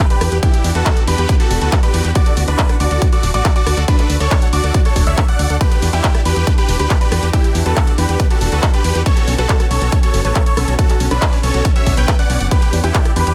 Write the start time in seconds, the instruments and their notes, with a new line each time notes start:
Already playing: ambient pad E3 B3 D4 F#4 G4, impact
0.10 supersaw synth G4 B4, synth pluck D5, grand piano B5, closed hi-hat
0.21 fm bass E2, synth pluck D4, cross-stick, open hi-hat
0.32 fm bass E2, synth pluck G4, closed hi-hat
0.43 synth pluck D4, supersaw synth E4 G4, grand piano G5, kick, closed hi-hat
0.54 synth pluck G4, closed hi-hat
0.64 fm bass E2, synth pluck D4, open hi-hat
0.75 fm bass E2, supersaw synth F#4 A4, synth pluck B4, grand piano A5, closed hi-hat
0.86 synth pluck D4, kick, clap, closed hi-hat
0.97 synth pluck D5, closed hi-hat
1.07 fm bass E2, synth pluck D4, supersaw synth G4 B4, grand piano B5, open hi-hat
1.18 fm bass E2, synth pluck G4, closed hi-hat
1.29 synth pluck D4, kick, closed hi-hat
1.40 supersaw synth F#4 A4, synth pluck G4, grand piano A5, closed hi-hat
1.51 fm bass E1, synth pluck D4, open hi-hat
1.61 fm bass D2, supersaw synth F#4 A4, synth pluck B4, grand piano A5, closed hi-hat
1.72 synth pluck D4, kick, clap, closed hi-hat
1.83 supersaw synth G4 B4, synth pluck D5, grand piano B5, closed hi-hat
1.94 fm bass E2, synth pluck D4, open hi-hat
2.05 fm bass E2, synth pluck G4, closed hi-hat
2.15 ambient pad A3, synth pluck D4, supersaw synth F#4 D5, grand piano D6, kick, closed hi-hat
2.26 synth pluck A4, closed hi-hat
2.37 fm bass D2, synth pluck D4, open hi-hat
2.48 fm bass D2, supersaw synth D4 B4, synth pluck D5, grand piano B5, closed hi-hat
2.59 synth pluck D4, kick, clap, closed hi-hat
2.69 synth pluck F#5, cross-stick, closed hi-hat
2.80 fm bass D2, synth pluck D4, supersaw synth F#4 D5, grand piano D6, open hi-hat
2.91 fm bass D2, synth pluck A4, closed hi-hat
3.02 synth pluck D4, kick, closed hi-hat
3.12 supersaw synth F#4 D5, synth pluck A4, grand piano D6, closed hi-hat
3.23 fm bass D1, synth pluck D4, open hi-hat
3.34 fm bass A1, supersaw synth F#4 D5, synth pluck D5, grand piano D6, closed hi-hat
3.45 synth pluck D4, kick, clap, closed hi-hat
3.56 supersaw synth F#4 D5, synth pluck F#5, grand piano D6, closed hi-hat
3.66 fm bass D2, synth pluck D4, cross-stick, open hi-hat
3.77 fm bass D2, synth pluck A4, closed hi-hat
3.88 synth pluck D4, supersaw synth D4 B4, grand piano B5, kick, closed hi-hat
3.99 synth pluck A4, clap, closed hi-hat
4.10 fm bass D2, synth pluck D4, open hi-hat
4.20 fm bass D2, supersaw synth A4 C#5, synth pluck D5, grand piano C#6, closed hi-hat
4.31 synth pluck D4, kick, clap, closed hi-hat
4.42 synth pluck F#5, closed hi-hat
4.53 fm bass D2, synth pluck D4, supersaw synth F#4 D5, grand piano D6, open hi-hat
4.64 fm bass D2, synth pluck A4, closed hi-hat
4.74 synth pluck D4, kick, closed hi-hat
4.85 synth pluck A4, supersaw synth A4 C#5, grand piano C#6, closed hi-hat
4.96 fm bass D1, synth pluck D4, kick, open hi-hat
5.07 fm bass D2, supersaw synth C#5 E5, synth pluck D5, grand piano E6, closed hi-hat
5.18 synth pluck D4, kick, clap, closed hi-hat
5.28 supersaw synth D5 F#5, synth pluck F#5, grand piano F#6, closed hi-hat
5.39 fm bass D2, synth pluck D4, open hi-hat
5.50 fm bass D2, synth pluck A4, closed hi-hat
5.61 ambient pad E3 B3 F#4 G4, synth pluck D4, supersaw synth G4 B4, grand piano B5, kick, closed hi-hat
5.72 synth pluck G4, closed hi-hat
5.82 fm bass E2, synth pluck D4, open hi-hat
5.93 fm bass E2, supersaw synth E4 G4, synth pluck B4, grand piano G5, closed hi-hat
6.04 kick, clap, closed hi-hat
6.15 synth pluck D5, cross-stick, closed hi-hat
6.25 fm bass E2, synth pluck D4, supersaw synth G4 B4, grand piano B5, open hi-hat
6.36 fm bass E2, synth pluck G4, closed hi-hat
6.47 synth pluck D4, kick, closed hi-hat
6.58 synth pluck G4, supersaw synth G4 B4, grand piano B5, closed hi-hat
6.69 fm bass E1, synth pluck D4, open hi-hat
6.79 fm bass D2, supersaw synth G4 B4, synth pluck B4, grand piano B5, closed hi-hat
6.90 synth pluck D4, kick, clap, closed hi-hat
7.01 supersaw synth G4 B4, synth pluck D5, grand piano B5, closed hi-hat
7.12 fm bass E2, synth pluck D4, cross-stick, open hi-hat
7.23 fm bass E2, synth pluck G4, closed hi-hat
7.33 synth pluck D4, supersaw synth E4 G4, grand piano G5, kick, closed hi-hat
7.44 synth pluck G4, closed hi-hat
7.55 fm bass E2, synth pluck D4, open hi-hat
7.66 fm bass E2, supersaw synth F#4 A4, synth pluck B4, grand piano A5, closed hi-hat
7.77 synth pluck D4, kick, clap, closed hi-hat
7.87 synth pluck D5, closed hi-hat
7.98 fm bass E2, synth pluck D4, supersaw synth G4 B4, grand piano B5, open hi-hat
8.09 fm bass E2, synth pluck G4, closed hi-hat
8.20 synth pluck D4, kick, closed hi-hat
8.30 supersaw synth F#4 A4, synth pluck G4, grand piano A5, closed hi-hat
8.41 fm bass E1, synth pluck D4, open hi-hat
8.52 fm bass D2, supersaw synth F#4 A4, synth pluck B4, grand piano A5, closed hi-hat
8.63 synth pluck D4, kick, clap, closed hi-hat
8.74 supersaw synth G4 B4, synth pluck D5, grand piano B5, closed hi-hat
8.84 fm bass E2, synth pluck D4, open hi-hat
8.95 fm bass E2, synth pluck G4, closed hi-hat
9.06 ambient pad D3 C#4, synth pluck C#4, supersaw synth A4 C#5, grand piano C#6, kick, closed hi-hat
9.17 synth pluck F#4, closed hi-hat
9.28 fm bass B1, synth pluck C#4, open hi-hat
9.38 fm bass B1, supersaw synth F#4 A4, synth pluck B4, grand piano A5, closed hi-hat
9.49 synth pluck C#4, kick, clap, closed hi-hat
9.60 synth pluck C#5, cross-stick, closed hi-hat
9.71 fm bass B1, synth pluck C#4, supersaw synth A4 C#5, grand piano C#6, open hi-hat
9.81 fm bass B1, synth pluck F#4, closed hi-hat
9.92 synth pluck C#4, kick, closed hi-hat
10.03 synth pluck F#4, supersaw synth A4 C#5, grand piano C#6, closed hi-hat
10.14 fm bass F#1, synth pluck C#4, open hi-hat
10.25 fm bass A1, supersaw synth A4 C#5, synth pluck B4, grand piano C#6, closed hi-hat
10.35 synth pluck C#4, kick, clap, closed hi-hat
10.46 supersaw synth A4 C#5, synth pluck C#5, grand piano C#6, closed hi-hat
10.57 fm bass B1, synth pluck C#4, cross-stick, open hi-hat
10.68 fm bass B1, synth pluck F#4, closed hi-hat
10.79 synth pluck C#4, supersaw synth F#4 A4, grand piano A5, kick, closed hi-hat
10.89 synth pluck F#4, clap, closed hi-hat
11.00 fm bass B1, synth pluck C#4, open hi-hat
11.11 fm bass B1, supersaw synth D4 B4, synth pluck B4, grand piano B5, cross-stick, closed hi-hat
11.22 synth pluck C#4, kick, clap, closed hi-hat
11.33 synth pluck C#5, open hi-hat
11.43 fm bass B1, synth pluck C#4, supersaw synth A4 C#5, grand piano C#6, open hi-hat
11.54 fm bass B1, synth pluck F#4, closed hi-hat
11.65 synth pluck C#4, kick, closed hi-hat
11.76 synth pluck F#4, supersaw synth C#5 E5, grand piano E6, closed hi-hat
11.86 fm bass B1, synth pluck D4, kick, open hi-hat
11.97 fm bass B1, supersaw synth B4 G5, synth pluck C#5, grand piano G6, closed hi-hat
12.08 synth pluck B4, kick, clap, closed hi-hat
12.19 synth pluck C#4, supersaw synth D5 F#5, grand piano F#6, closed hi-hat
12.30 fm bass B1, synth pluck C#4, open hi-hat
12.40 fm bass F#1, synth pluck F#5, closed hi-hat
12.51 ambient pad E3 D4 F#4 G4, synth pluck D4, supersaw synth G4 B4, grand piano B5, kick, closed hi-hat
12.62 synth pluck G4, closed hi-hat
12.73 fm bass E2, synth pluck D4, open hi-hat
12.84 fm bass E2, supersaw synth E4 G4, synth pluck B4, grand piano G5, closed hi-hat
12.94 synth pluck D4, kick, clap, closed hi-hat
13.05 synth pluck D5, cross-stick, closed hi-hat
13.16 fm bass E2, synth pluck D4, supersaw synth G4 B4, grand piano B5, open hi-hat
13.27 fm bass E2, synth pluck G4, closed hi-hat